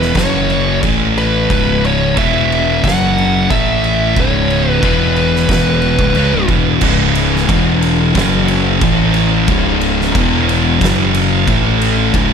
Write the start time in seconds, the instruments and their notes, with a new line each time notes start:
Already playing: fingered electric bass E1, distorted electric guitar E2 B2 E3, lead electric guitar B4
0.02 snare
0.15 fingered electric bass F#1, distorted electric guitar F#2 C#3 F#3, lead electric guitar C#5, kick, snare, crash
0.50 crash
0.83 fingered electric bass A1, distorted electric guitar A2 E3 A3, kick, crash
1.18 lead electric guitar B4, crash
1.50 fingered electric bass C#1, distorted electric guitar C#2 G#2 C#3, kick, crash
1.85 lead electric guitar C#5, crash
2.15 fingered electric bass E1, distorted electric guitar E2 B2 E3, lead electric guitar E5, kick, crash
2.52 crash
2.82 fingered electric bass F#1, distorted electric guitar F#2 C#3 F#3, lead electric guitar F#5, kick, crash
2.88 snare
3.18 crash
3.50 fingered electric bass A1, distorted electric guitar A2 E3 A3, lead electric guitar E5, kick, crash
3.84 crash
4.16 fingered electric bass C#1, distorted electric guitar C#2 G#2 C#3, lead electric guitar C#5, kick, crash
4.50 crash
4.71 lead electric guitar B4
4.83 fingered electric bass E1, distorted electric guitar E2 B2 E3, lead electric guitar B4, kick, crash
5.16 crash
5.36 snare
5.49 fingered electric bass E1, distorted electric guitar E2 B2 E3, kick, snare, crash
5.82 crash
5.99 fingered electric bass C#1, distorted electric guitar C#2 G#2, kick
6.15 fingered electric bass C#2, distorted electric guitar C#3 G#3, crash
6.32 fingered electric bass C#1, distorted electric guitar C#2 G#2
6.49 fingered electric bass E1, distorted electric guitar E2 B2 E3, kick, crash
6.81 fingered electric bass C#1, distorted electric guitar C#2 G#2 C#3, kick, crash
7.15 ride
7.36 snare
7.48 fingered electric bass E1, distorted electric guitar E2 B2 E3, kick, ride
7.82 ride
8.15 fingered electric bass F#1, distorted electric guitar F#2 C#3 F#3, kick, snare, ride
8.48 ride
8.81 fingered electric bass A1, distorted electric guitar A2 E3 A3, kick, ride
9.14 ride
9.48 fingered electric bass C#1, distorted electric guitar C#2 G#2 C#3, kick, ride
9.81 ride
10.01 snare
10.15 fingered electric bass E1, distorted electric guitar E2 B2 E3, kick, ride
10.49 ride
10.81 fingered electric bass F#1, distorted electric guitar F#2 C#3 F#3, kick, snare, ride
11.14 ride
11.47 fingered electric bass A1, distorted electric guitar A2 E3 A3, kick, ride
11.82 ride
12.13 fingered electric bass C#1, distorted electric guitar C#2 G#2 C#3, kick, ride